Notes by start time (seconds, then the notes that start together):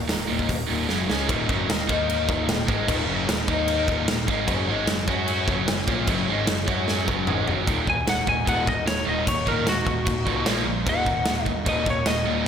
Already playing: A#3 D#4 F#4
0.09 D#1 D#2 A#2, snare, open hi-hat
0.28 D#1 D#2 A#2 D#3
0.39 kick
0.49 D#1 D#2 A#2, kick, open hi-hat
0.69 D#1 D#2 A#2 D#3
0.87 F#1 F#2 C#3 F#3 C#4 G#4, snare
1.07 C#2 C#3 G#3 C#4 D#5, snare
1.28 D#1 D#2 A#2 D#3 D#4 A#4 F5, kick, crash
1.47 F#1 F#2 C#3 F#3, kick
1.69 D#1 D#2 A#2, snare, crash
1.88 D#2 D#3 A#3 D#4, kick
2.10 crash
2.29 D#1 D#2 A#2 D#3, kick
2.48 D#1 D#2 A#2, snare, crash
2.68 G#1 G#2 D#3 G#3, kick
2.88 D#1 D#2 A#2 D#3, kick, crash
3.07 F#1 F#2 C#3 F#3
3.28 D#1 D#2 A#2, snare, crash
3.48 D#2 D#3 A#3 D#4, kick
3.68 crash
3.88 D#1 D#2 A#2 D#3, kick
4.08 D#1 D#2 A#2, snare, crash
4.28 G#1 G#2 D#3 G#3, kick
4.46 F#1 F#2 C#3 F#3 C#4 G#4, kick, crash
4.68 G#1 G#2 D#3 G#3
4.87 F#1 F#2 C#3, snare, crash
5.07 F#2 F#3 C#4 F#4, kick
5.28 crash
5.48 F#1 F#2 C#3 F#3, kick
5.68 F#1 F#2 C#3, snare, crash
5.88 A#1 A#2 F3 A#3, kick
6.07 F#1 F#2 C#3 F#3, kick, crash
6.28 G#1 G#2 D#3 G#3
6.47 F#1 F#2 C#3, snare, crash
6.68 F#2 F#3 C#4 F#4, kick
6.88 snare
7.08 F#1 F#2 C#3 F#3, kick
7.27 G#1 G#2 D#3 G#3, mid tom
7.47 F#1 F#2 C#3 F#3, floor tom
7.67 D#1 D#2 A#2 D#3 A#3 D#4 F#4, kick, crash
7.87 D#1 D#2 A#2 G#5, kick
8.06 D#1 D#2 A#2 F#5, snare, crash
8.27 D#1 D#2 A#2 G#5, kick
8.46 D#1 D#2 A#2 D#3 F#5, kick, crash
8.67 D#1 D#2 A#2 D#5, kick
8.86 D#1 D#2 A#2 C#5, snare, crash
9.07 D#1 D#2 A#2 D#3 D#5
9.27 D#1 D#2 A#2 C#5, kick, crash
9.47 D#1 D#2 A#2 D#3 A#4, kick
9.67 D#1 D#2 A#2 F#4, snare, crash
9.87 D#1 D#2 A#2, kick
10.06 D#1 D#2 A#2, kick, crash
10.26 C2 D#2 A#2 D#3, kick
10.46 A#1 A#2 F3 A#3 F4 C5, snare, crash
10.66 A#1 A#2 F3
10.87 D#1 D#2 A#2 D#3 D#4 F#4 F#5, kick, crash
11.06 D#1 D#2 A#2, kick
11.26 D#1 D#2 A#2, snare, crash
11.46 D#1 D#2 A#2 D#5, kick
11.66 D#1 D#2 A#2 D#3 D#5, kick, crash
11.86 D#1 D#2 A#2, kick
11.90 C#5
12.05 D#1 D#2 A#2 D#5, snare, crash
12.25 D#1 D#2 A#2 D#3